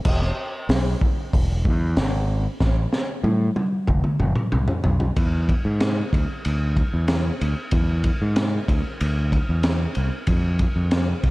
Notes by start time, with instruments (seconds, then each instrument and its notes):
0.05 fingered electric bass E1, kick, crash
0.22 snare
0.69 fingered electric bass B1, snare, open hi-hat
1.01 kick
1.33 fingered electric bass E1, kick, open hi-hat
1.65 fingered electric bass E2, kick
1.97 fingered electric bass G#1, snare, open hi-hat
2.60 fingered electric bass A1, kick, snare
2.93 snare
3.24 fingered electric bass A2, high tom
3.56 high tom
3.87 fingered electric bass F1, kick, mid tom
4.04 mid tom
4.20 fingered electric bass F1, mid tom
4.36 mid tom
4.52 fingered electric bass C2, mid tom
4.68 floor tom
4.84 fingered electric bass B1, floor tom
5.00 floor tom
5.16 fingered electric bass E2, kick, ride
5.49 kick, ride
5.65 fingered electric bass G#2
5.80 snare, ride
6.13 fingered electric bass D2, kick, ride
6.45 fingered electric bass D2, ride
6.77 kick, ride
6.94 fingered electric bass E2
7.08 snare, ride
7.41 fingered electric bass D2, ride
7.71 fingered electric bass E2, kick, ride
8.04 kick, ride
8.22 fingered electric bass G#2
8.36 snare, ride
8.68 fingered electric bass D2, kick, ride
9.01 fingered electric bass D2, ride
9.32 kick, ride
9.49 fingered electric bass E2
9.63 snare, ride
9.95 fingered electric bass C2, ride
10.27 fingered electric bass F2, kick, ride
10.59 kick, ride
10.76 fingered electric bass F2
10.91 snare, ride
11.23 fingered electric bass C2, kick, ride